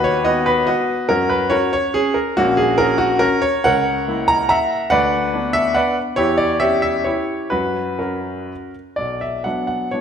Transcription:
Already playing: D#2 D#4 F#4 B4
0.04 C#5
0.25 B3 D#4 F#4 B4 D#5
0.46 B4
0.67 F#4 B4 D#5
1.09 F#2 C#4 F#4 A#4
1.29 B4
1.50 C#4 F#4 A#4 C#5
1.73 C#5
1.94 C#4 G#4
2.14 A#4
2.37 A#1 A#3 C#4 F#4
2.57 G#4
2.78 C#4 F#4 A#4
2.98 F#4
3.19 C#4 F#4 A#4
3.42 C#5
3.64 C#2 A#4 C#5 F#5
4.08 A#3 E4
4.28 A#5
4.49 E5 F#5 A#5
4.90 D2 B4 D5 F#5
5.34 B3 D4
5.53 E5
5.74 B4 D5 F#5
6.16 E2 E4 G4 C#5
6.38 D5
6.60 C#4 G4 C#5 E5
6.82 E5
7.04 E4 G4 C#5
7.50 F#2 F#4 B4
7.99 C#4 F#4 A#4
8.96 B1 D5
9.21 E5
9.44 F#3 B3 D4 F#5
9.67 F#5
9.91 F#3 B3 D4 C#5

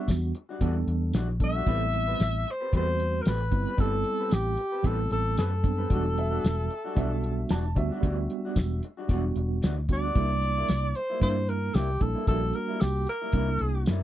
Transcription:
Already playing: G3 B3 D4 F#4
0.08 E2, muted clean electric guitar stroke, kick, snare, closed hi-hat, tambourine
0.35 muted clean electric guitar stroke, closed hi-hat
0.49 G3 D4 F#4
0.61 E2 E3 G3 B3 D4 F#4 A4, kick, closed hi-hat
0.76 muted clean electric guitar stroke
0.87 E2, muted clean electric guitar stroke, closed hi-hat
1.13 A#1 E3 G3 D4 F#4, snare, closed hi-hat, tambourine
1.29 muted clean electric guitar stroke
1.40 G3 B3 D4 A4, muted clean electric guitar stroke, kick, closed hi-hat
1.44 E5
1.55 G3 D4 F#4
1.66 A1 G3 A3 B3 C4 E4 G4 B4, kick, closed hi-hat
1.81 muted clean electric guitar stroke
1.93 muted clean electric guitar stroke, closed hi-hat
2.07 C4 G4 B4
2.20 A1, muted clean electric guitar stroke, snare, closed hi-hat, tambourine
2.46 muted clean electric guitar stroke, closed hi-hat
2.51 C5
2.61 C4 G4 B4
2.73 E2 G3 A3 C4 F#4 G4 B4, kick, closed hi-hat
2.77 C5
2.88 muted clean electric guitar stroke
3.00 muted clean electric guitar stroke, closed hi-hat
3.21 A#4, closed hi-hat, tambourine
3.26 A1 A3 C4 G4 B4, snare
3.40 muted clean electric guitar stroke
3.51 G1 G3 B3 C4 E4, muted clean electric guitar stroke, kick, closed hi-hat
3.67 C4 G4 B4
3.77 G1 G3 A3 B3 C4 E4 G4 A4 B4, kick, closed hi-hat
3.94 muted clean electric guitar stroke
4.04 muted clean electric guitar stroke, closed hi-hat
4.20 C4 G4 B4
4.31 A1 G4, muted clean electric guitar stroke, snare, closed hi-hat, tambourine
4.57 muted clean electric guitar stroke, closed hi-hat
4.72 C4 G4 B4
4.83 A1 G3 A3 B3 C4 E4 G4 A4 B4, kick, closed hi-hat
4.99 muted clean electric guitar stroke
5.11 A1 A4, muted clean electric guitar stroke, closed hi-hat
5.37 F#2 A3 C4 G4 A4 B4, snare, closed hi-hat, tambourine
5.52 muted clean electric guitar stroke
5.63 G3 B3 C4 D4, muted clean electric guitar stroke, kick, closed hi-hat
5.78 C4 G4 B4
5.90 E1 E3 G3 B3 D4 F#4, kick, closed hi-hat
6.04 muted clean electric guitar stroke
6.17 E5, muted clean electric guitar stroke, closed hi-hat
6.31 G3 D4 F#4
6.43 E1, muted clean electric guitar stroke, snare, closed hi-hat, tambourine
6.70 muted clean electric guitar stroke, closed hi-hat
6.84 G3 D4 F#4
6.95 B1 E3 G3 B3 D4 F#4 E5, kick, closed hi-hat
7.11 muted clean electric guitar stroke
7.23 muted clean electric guitar stroke, closed hi-hat
7.49 E1 E3 G3 D4 F#4 A5, snare, closed hi-hat, tambourine
7.64 muted clean electric guitar stroke
7.75 D2 G3 B3 D4 F#4 E5, muted clean electric guitar stroke, kick, closed hi-hat
7.91 G3 D4 F#4
8.01 D2 E3 G3 B3 D4 F#4, kick, closed hi-hat
8.18 muted clean electric guitar stroke
8.30 muted clean electric guitar stroke, closed hi-hat
8.45 G3 D4 F#4
8.56 E1, muted clean electric guitar stroke, kick, snare, closed hi-hat, tambourine
8.83 muted clean electric guitar stroke, closed hi-hat
8.97 G3 D4 F#4
9.08 E1 E3 G3 B3 D4 F#4, kick, closed hi-hat
9.24 muted clean electric guitar stroke
9.36 E1, muted clean electric guitar stroke, closed hi-hat
9.62 D2 E3 G3 D4 F#4, snare, closed hi-hat, tambourine
9.76 muted clean electric guitar stroke
9.89 G3 B3 D4 F#4 D5, muted clean electric guitar stroke, kick, closed hi-hat
10.03 G3 D4 F#4
10.15 C2 C3 G3 A#3 D4 E4, kick, closed hi-hat
10.30 muted clean electric guitar stroke
10.42 muted clean electric guitar stroke, closed hi-hat
10.57 G3 A#3 E4
10.68 C2, muted clean electric guitar stroke, snare, closed hi-hat, tambourine
10.95 C5, muted clean electric guitar stroke, closed hi-hat
11.10 G3 A#3 E4
11.20 G2 C3 G3 A#3 D4 E4 C5, kick, closed hi-hat
11.37 muted clean electric guitar stroke
11.49 A#4, muted clean electric guitar stroke, closed hi-hat
11.74 C2 C3 G3 A#3 E4 G4, snare, closed hi-hat, tambourine
11.90 muted clean electric guitar stroke
12.00 A#1 G3 A#3 D4 E4 A4, muted clean electric guitar stroke, kick, closed hi-hat
12.15 G3 A#3 E4
12.27 A#1 C3 G3 A#3 D4 E4 F#4 A4, kick, closed hi-hat
12.42 muted clean electric guitar stroke
12.53 A#4, muted clean electric guitar stroke, closed hi-hat
12.69 G3 A#3 E4
12.80 C2 G4, muted clean electric guitar stroke, snare, closed hi-hat, tambourine
13.07 A#4, muted clean electric guitar stroke, closed hi-hat
13.21 G3 A#3 E4
13.32 C2 C3 G3 A#3 D4 E4, kick, closed hi-hat
13.49 muted clean electric guitar stroke
13.59 C2, muted clean electric guitar stroke, closed hi-hat
13.86 F#2 C3 G3 A#3 E4, snare, closed hi-hat, tambourine

